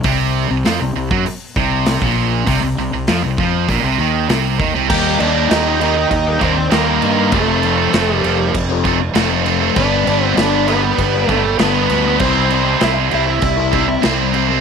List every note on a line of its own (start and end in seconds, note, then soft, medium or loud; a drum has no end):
0.03 0.47 C2 medium
0.03 0.49 C3 loud
0.03 kick loud
0.03 open hi-hat medium
0.50 0.64 C2 medium
0.50 0.65 C3 medium
0.65 0.79 F2 loud
0.65 0.80 F3 loud
0.65 snare medium
0.65 open hi-hat medium
0.81 0.95 C2 medium
0.81 0.95 C3 medium
0.95 1.10 C2 medium
0.95 1.10 C3 medium
1.11 1.25 F#2 loud
1.11 1.25 F#3 loud
1.11 kick loud
1.26 muted fingered electric bass stroke soft
1.26 muted distorted electric guitar stroke medium
1.26 muted overdriven electric guitar stroke medium
1.26 open hi-hat medium
1.56 1.98 C2 loud
1.56 2.01 C3 loud
1.56 kick loud
1.86 snare loud
1.86 open hi-hat medium
2.01 2.44 A#1 loud
2.01 2.47 A#2 loud
2.01 kick loud
2.47 2.61 C2 medium
2.47 2.62 C3 loud
2.47 kick loud
2.47 open hi-hat medium
2.63 2.77 C2 medium
2.63 2.77 C3 medium
2.78 2.92 C2 medium
2.78 2.92 C3 medium
2.93 3.07 C2 medium
2.93 3.08 C3 medium
3.07 3.23 F2 medium
3.07 3.22 F3 loud
3.07 snare loud
3.07 open hi-hat soft
3.23 3.37 C2 medium
3.23 3.39 C3 medium
3.38 3.66 F2 medium
3.38 3.68 F3 medium
3.38 kick loud
3.69 3.82 A#1 medium
3.69 3.84 A#2 loud
3.69 kick medium
3.69 open hi-hat soft
3.83 3.97 C2 medium
3.83 3.99 C3 loud
3.98 4.27 D#2 loud
3.98 4.29 D#3 loud
4.29 4.57 C2 medium
4.29 4.59 C3 loud
4.29 snare loud
4.29 open hi-hat medium
4.59 4.74 D#2 medium
4.59 4.74 D#3 loud
4.59 kick loud
4.74 4.89 C2 loud
4.74 4.89 C3 loud
4.89 5.17 D#2 loud
4.89 5.48 D#3 medium
4.89 5.36 G3 medium
4.89 5.49 A#3 loud
4.89 5.35 G4 loud
4.89 5.33 A#4 loud
4.89 kick loud
4.89 crash loud
4.89 crash medium
4.94 5.23 D#4 loud
5.20 5.47 D#2 loud
5.20 5.50 D#3 medium
5.20 5.51 G3 medium
5.20 5.52 A#3 medium
5.20 5.50 D4 loud
5.20 5.48 D#4 medium
5.20 crash medium
5.24 5.53 D#4 medium
5.35 5.50 G3 medium
5.35 5.51 G4 medium
5.35 5.51 A#4 medium
5.49 6.04 D#2 medium
5.49 6.11 D#3 medium
5.49 5.80 G3 loud
5.49 5.79 A#3 loud
5.49 5.80 D#4 medium
5.49 5.81 G4 loud
5.49 5.82 A#4 loud
5.49 snare loud
5.49 crash medium
5.54 5.83 D#4 loud
5.80 6.26 D#3 medium
5.80 5.96 G3 medium
5.80 5.96 A#3 medium
5.80 6.10 D#4 medium
5.80 5.96 D#4 medium
5.80 5.96 G4 medium
5.80 5.95 A#4 medium
5.80 crash medium
5.96 muted distorted electric guitar stroke soft
5.96 muted overdriven electric guitar stroke soft
6.11 6.38 D#2 medium
6.11 6.42 D#4 medium
6.11 6.40 G4 medium
6.11 kick medium
6.11 crash medium
6.27 6.42 G3 medium
6.27 6.43 A#3 medium
6.27 6.44 D#4 medium
6.39 6.68 D#2 loud
6.39 6.70 D#3 medium
6.39 6.56 G3 medium
6.39 6.56 A#3 medium
6.39 6.70 C4 medium
6.39 6.71 D4 medium
6.39 6.56 G4 medium
6.39 6.55 A#4 medium
6.39 kick medium
6.39 crash medium
6.44 6.57 A#3 medium
6.44 6.57 D#4 medium
6.56 muted distorted electric guitar stroke soft
6.56 muted overdriven electric guitar stroke medium
6.71 6.99 D#2 medium
6.71 7.17 D#3 loud
6.71 6.87 G3 loud
6.71 7.00 A#3 loud
6.71 7.29 D#4 medium
6.71 6.86 G4 loud
6.71 6.85 A#4 loud
6.71 snare loud
6.71 crash medium
6.75 7.04 D#4 loud
6.86 7.01 G3 medium
6.86 7.02 G4 medium
6.86 7.03 A#4 medium
7.01 7.29 G2 medium
7.01 7.31 D#3 medium
7.01 7.19 G3 medium
7.01 7.31 A#3 medium
7.01 7.17 G4 medium
7.01 7.15 A#4 medium
7.01 crash medium
7.06 7.16 D#4 medium
7.17 7.32 G3 medium
7.17 7.32 A#3 medium
7.17 7.31 D#4 medium
7.17 7.31 G4 medium
7.17 7.31 A#4 medium
7.32 7.86 F1 medium
7.32 7.92 F2 loud
7.32 7.62 C3 loud
7.32 7.91 F3 medium
7.32 7.92 A3 medium
7.32 7.79 C4 loud
7.32 7.77 F4 loud
7.32 7.76 A4 medium
7.32 kick loud
7.32 crash medium
7.63 7.93 C3 medium
7.63 7.94 F3 medium
7.63 7.95 A3 medium
7.63 7.96 C4 medium
7.63 crash medium
7.77 7.92 C4 medium
7.77 7.93 F4 medium
7.77 7.94 A4 medium
7.92 8.20 F1 loud
7.92 8.55 F2 loud
7.92 8.23 C3 loud
7.92 8.54 F3 loud
7.92 8.21 A3 loud
7.92 8.22 C4 medium
7.92 8.23 F4 loud
7.92 8.24 A4 loud
7.92 snare loud
7.92 crash medium
8.13 8.51 G3 medium
8.13 8.51 A#3 medium
8.22 8.51 F1 medium
8.22 8.38 C3 medium
8.22 8.39 F3 medium
8.22 8.38 A3 medium
8.22 8.38 C4 medium
8.22 8.38 F4 medium
8.22 8.38 A4 medium
8.22 crash medium
8.27 8.39 C4 medium
8.39 muted distorted electric guitar stroke medium
8.39 muted overdriven electric guitar stroke soft
8.54 9.08 F1 loud
8.54 kick medium
8.54 crash medium
8.69 8.84 F3 medium
8.69 8.85 A3 medium
8.69 8.86 C4 medium
8.84 9.00 C3 medium
8.84 9.00 F3 medium
8.84 8.99 A3 medium
8.84 8.98 C4 medium
8.84 8.99 F4 medium
8.84 8.98 A4 medium
8.84 kick medium
8.84 crash medium
9.00 muted distorted electric guitar stroke soft
9.00 muted overdriven electric guitar stroke medium
9.14 9.69 F1 medium
9.14 9.74 F2 loud
9.14 9.44 C3 loud
9.14 9.60 F3 loud
9.14 9.44 A3 loud
9.14 9.32 C4 loud
9.14 9.31 F4 loud
9.14 9.29 A4 loud
9.14 snare loud
9.14 crash medium
9.30 9.45 C4 medium
9.30 9.46 F4 medium
9.30 9.47 A4 medium
9.45 9.74 C3 medium
9.45 9.62 F3 medium
9.45 9.74 A3 medium
9.45 9.62 C4 medium
9.45 9.60 F4 loud
9.45 9.59 A4 medium
9.45 crash medium
9.60 9.76 F3 medium
9.60 9.75 A3 medium
9.60 9.76 C4 medium
9.60 9.75 F4 medium
9.60 9.74 A4 medium
9.75 10.03 G1 medium
9.75 10.35 G2 loud
9.75 10.05 D3 medium
9.75 10.36 G3 loud
9.75 10.22 B3 loud
9.75 10.23 D4 loud
9.75 10.20 B4 loud
9.75 kick loud
9.75 crash medium
10.06 10.34 G1 loud
10.06 10.37 D3 medium
10.06 10.38 G3 medium
10.06 10.38 B3 medium
10.06 10.39 D4 medium
10.06 crash medium
10.20 10.37 B3 medium
10.20 10.33 C4 medium
10.20 10.38 B4 medium
10.24 10.36 C4 medium
10.24 10.36 D4 medium
10.36 10.91 G1 medium
10.36 10.98 G2 medium
10.36 10.66 D3 loud
10.36 10.67 G3 loud
10.36 10.68 B3 loud
10.36 10.67 D4 loud
10.36 10.69 B4 loud
10.36 snare loud
10.36 crash medium
10.67 10.84 D3 medium
10.67 11.27 G3 medium
10.67 10.82 B3 medium
10.67 10.82 D4 medium
10.67 10.81 B4 medium
10.67 crash medium
10.83 muted distorted electric guitar stroke soft
10.83 muted overdriven electric guitar stroke medium
10.98 11.25 G1 loud
10.98 kick medium
10.98 crash medium
11.14 11.29 G3 medium
11.14 11.30 B3 medium
11.14 11.31 D4 medium
11.28 11.56 G1 medium
11.28 11.44 D3 medium
11.28 11.58 G3 medium
11.28 11.55 A3 medium
11.28 11.56 A3 medium
11.28 11.42 B3 medium
11.28 11.43 D4 medium
11.28 11.42 B4 loud
11.28 kick medium
11.28 crash medium
11.43 muted distorted electric guitar stroke medium
11.43 muted overdriven electric guitar stroke medium
11.58 11.86 G1 medium
11.58 12.18 G2 loud
11.58 11.88 D3 loud
11.58 11.89 G3 medium
11.58 11.74 B3 loud
11.58 11.75 D4 loud
11.58 11.73 B4 loud
11.58 snare loud
11.58 crash medium
11.74 11.90 B3 medium
11.74 11.89 D4 medium
11.74 11.91 B4 medium
11.89 12.17 D2 medium
11.89 12.18 D3 medium
11.89 12.20 G3 medium
11.89 12.04 B3 medium
11.89 12.05 D4 medium
11.89 12.03 B4 medium
11.89 crash medium
12.04 12.19 B3 medium
12.04 12.19 D4 medium
12.04 12.18 B4 medium
12.08 12.21 G3 medium
12.18 12.74 C2 medium
12.18 12.79 C3 medium
12.18 12.79 E3 loud
12.18 12.68 G3 loud
12.18 12.65 C4 loud
12.18 12.65 E4 loud
12.18 12.64 C5 loud
12.18 kick loud
12.18 crash medium
12.50 12.79 C3 medium
12.50 12.81 G3 medium
12.50 12.81 C4 medium
12.50 12.82 E4 medium
12.50 crash medium
12.65 12.81 G3 medium
12.65 12.80 C4 medium
12.65 12.81 E4 medium
12.65 12.82 C5 medium
12.80 13.08 C2 medium
12.80 13.42 C3 loud
12.80 13.42 E3 loud
12.80 13.11 G3 loud
12.80 13.11 C4 loud
12.80 13.12 E4 loud
12.80 13.12 C5 loud
12.80 snare loud
12.80 crash medium
13.11 13.40 C2 medium
13.11 13.57 C3 medium
13.11 13.26 G3 medium
13.11 13.26 C4 medium
13.11 13.26 E4 medium
13.11 13.26 C5 medium
13.11 crash medium
13.27 muted distorted electric guitar stroke soft
13.27 muted overdriven electric guitar stroke medium
13.42 13.96 C2 medium
13.42 kick medium
13.42 crash medium
13.57 13.72 G3 medium
13.57 13.74 C4 medium
13.57 13.74 E4 medium
13.72 14.01 C3 medium
13.72 13.87 G3 medium
13.72 13.87 C4 medium
13.72 13.87 E4 medium
13.72 13.86 C5 medium
13.72 kick medium
13.72 crash medium
13.87 muted overdriven electric guitar stroke medium
13.87 muted distorted electric guitar stroke soft
14.02 14.58 C2 medium
14.02 14.49 C3 loud
14.02 14.49 E3 loud
14.02 14.19 G3 loud
14.02 14.18 C4 loud
14.02 14.17 E4 loud
14.02 14.16 C5 loud
14.02 snare medium
14.02 crash medium
14.17 14.31 G3 medium
14.17 14.32 C4 medium
14.17 14.32 E4 medium
14.17 14.33 C5 medium
14.32 14.61 C3 medium
14.32 14.48 G3 medium
14.32 14.48 C4 medium
14.32 14.47 E4 medium
14.32 14.46 C5 medium
14.32 crash medium
14.47 14.61 G3 medium
14.47 14.61 C4 medium
14.47 14.61 E4 medium
14.47 14.61 C5 medium